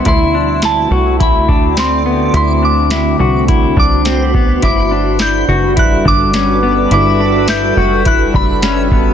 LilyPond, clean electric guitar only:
\new Staff \with { instrumentName = "Clean electric guitar" } { \time 4/4 \key d \major \tempo 4 = 105 e'8 d'8 e'8 fis'8 e'8 d'8 c'8 b8 | e'8 d'8 e'8 fis'8 e'8 d'8 c'8 b8 | e'8 d'8 e'8 fis'8 e'8 d'8 cis'8 b8 | e'8 d'8 e'8 fis'8 e'8 d'8 cis'8 b8 | }